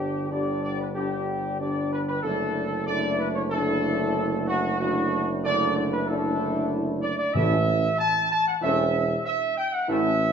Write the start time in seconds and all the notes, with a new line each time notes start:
Already playing: G1 D3 G3 D4 G4
0.31 D3 G3 D4 G4 D5
0.63 D5
0.80 B4
0.95 D3 G3 D4 G4
1.60 D3 G3 D4 G4 D5
1.93 B4
2.07 B4
2.23 F#1 D3 A3 D4 E4 A4
2.86 D3 A3 D4 E4 D5
3.20 B4
3.34 C#5
3.50 D3 A3 D4 E4 A4
4.48 F#4
4.79 D3 A3 D4 E4 F#4
5.44 D3 A3 D4 E4 D5
5.77 D5
5.92 B4
6.08 D3 A3 D4 E4 A4
7.02 D5
7.19 D5
7.34 A1 A2 E3 A3 C#4 E4 E5
7.99 A5
8.32 A5
8.48 F#5
8.62 E1 E3 A3 C#4 E4 E5
9.26 E5
9.58 G5
9.73 F#5
9.88 A1 E3 A3 C#4 E4 E5